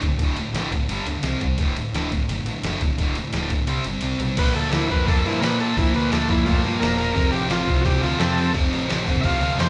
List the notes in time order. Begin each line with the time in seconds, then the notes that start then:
0.01 D1, kick, ride
0.06 D2 A2
0.18 D1 D2, kick, ride
0.22 A2 D3
0.37 D2 A2, ride
0.53 A1 D2 A2, snare, ride
0.57 D3
0.71 D2 A2, kick, ride
0.89 G1 G2 D3 G3, ride
1.06 D2 G2 D3, ride
1.23 C2 C3 G3 C4, snare, ride
1.41 C2 C3 G3, kick, ride
1.58 D1 D2 A2 D3, kick, ride
1.76 D2 A2, ride
1.92 D1 D2 A2 D3, snare, ride
2.11 D2 A2, kick, ride
2.29 F#1 D2 A2, ride
2.46 A1 D2 A2, ride
2.63 F#1 D2 A2 D3, snare, ride
2.80 D1 D2 A2, kick, ride
2.98 D1 D2 A2 D3, kick, ride
3.15 D2 A2, ride
3.32 D1 D2 A2, snare, ride
3.36 D3
3.50 D2 A2, kick, ride
3.67 C2 C3 G3 C4, ride
3.84 G1 C3 G3, ride
4.01 C2 C3 G3 C4, ride
4.19 B1 C3 G3, ride
4.37 A#1 A#2 F3 A#3 B4, kick, open hi-hat, crash
4.54 D2 F3 A#3 A4, open hi-hat
4.71 D2 A#2 F3 A#3 E4, snare, open hi-hat
4.89 F2 A#2 F3 A#3 B4, kick, open hi-hat
5.06 F2 A#2 F3 A#3 A4, kick, open hi-hat
5.24 G2 A#2 F3 A#3 E4, snare, open hi-hat
5.40 A#2 F3 A#4 B4, snare, open hi-hat
5.45 A#3
5.58 F3 A#3 A4, open hi-hat
5.77 A#1 A#2 F3 A#3 E4, kick, open hi-hat
5.94 D2 F3 A#3 B4, open hi-hat
6.12 D2 A#2 F3 A#3 A4, snare, open hi-hat
6.29 F2 F3 A#3 E4, kick, open hi-hat
6.33 A#2
6.45 F2 A#2 A3 F4, kick, open hi-hat
6.49 F3 A#3
6.64 G2 A#2 F3 A#3, snare, open hi-hat
6.80 E1 A#2 F3 A#3 A#4, snare, open hi-hat
6.97 A#3 A#4, open hi-hat
7.01 F3
7.13 F1 F2 C3 F3, kick, open hi-hat
7.31 A1 C3 F3 G4, open hi-hat
7.48 A1 F2 C3 F4, snare, open hi-hat
7.52 F3
7.67 C2 F2 C3 F3, kick, open hi-hat
7.81 F2 F#4
7.85 C2 C3 F3 G4, kick, open hi-hat
8.01 D2 F2 C3 F3 F4, snare, open hi-hat
8.18 F2 C3 F3 C4 A4, snare, open hi-hat
8.34 C3 F3, open hi-hat
8.53 F1 F2 C3 F3, kick, open hi-hat
8.71 A1 C3 F3, open hi-hat
8.87 F2 C3, snare, open hi-hat
8.91 A1 F3
9.06 C2 F2 C3 F3, kick, open hi-hat
9.15 kick
9.21 C2 F2 E5, kick, open hi-hat
9.25 C3 F3 F5
9.41 D2 F2 C3 F3, open hi-hat
9.57 F2 C3 F3 C5, snare, open hi-hat